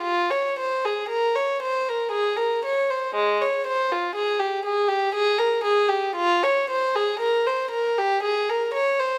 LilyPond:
\new Staff \with { instrumentName = "Violin" } { \time 3/4 \key f \minor \tempo 4 = 59 f'16 des''16 c''16 aes'16 bes'16 des''16 c''16 bes'16 aes'16 bes'16 des''16 c''16 | aes16 des''16 c''16 f'16 aes'16 g'16 aes'16 g'16 aes'16 bes'16 aes'16 g'16 | f'16 des''16 c''16 aes'16 bes'16 c''16 bes'16 g'16 aes'16 bes'16 des''16 c''16 | }